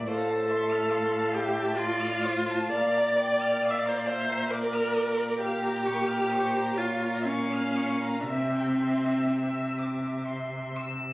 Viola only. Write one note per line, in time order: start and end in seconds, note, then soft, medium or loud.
0.09 1.35 A4 medium
1.34 1.79 G4 medium
1.77 2.71 F4 medium
2.72 3.72 D5 loud
3.71 3.80 E5 medium
3.79 3.90 D5 medium
3.88 3.99 C5 medium
3.98 4.08 D5 medium
4.07 4.52 C5 medium
4.50 5.39 A#4 medium
5.40 6.79 G4 loud
6.78 7.26 F4 medium
7.25 8.22 C#4 medium
8.20 8.29 D4 soft
8.28 10.26 C4 medium